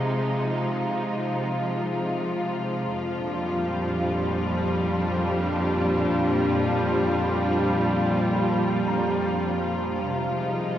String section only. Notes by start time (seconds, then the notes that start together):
Already playing: C3 F3 G#3 D#4 F4
2.92 F2
3.16 A#2 D4
3.31 G3
10.06 C3
10.30 G#3
10.36 D#4